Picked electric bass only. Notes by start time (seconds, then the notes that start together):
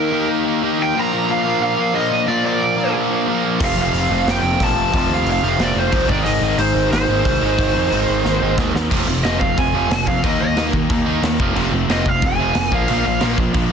3.60 F1
3.76 F1
3.93 F1
4.09 F1
4.25 F1
4.42 F1
4.61 A#1
4.75 F1
4.94 F1
5.09 D#2
5.25 F1
5.42 F1
5.58 F1
5.74 F1
5.93 C2
6.09 G#1
6.25 G#1
6.41 G#1
6.57 G#1
6.75 G#1
6.92 G#1
7.08 G#1
7.25 C2
7.41 G#1
7.58 G#1
7.75 F2
7.91 G#1
8.09 G#1
8.25 G#1
8.42 G#1
8.58 D#2
8.75 D#2
8.91 F1
9.06 F1
9.23 F1
9.40 F1
9.58 F1
9.90 F1
10.07 F2
10.24 D#2
10.39 D#2
10.56 D#2
10.73 D#2
10.90 D#2
11.22 D#2
11.40 F1
11.55 F1
11.72 F1
11.88 F1
12.06 F1
12.23 F1
12.55 F1
12.72 A#1
12.89 A#1
13.06 A#1
13.22 A#1
13.38 A#1
13.54 A#1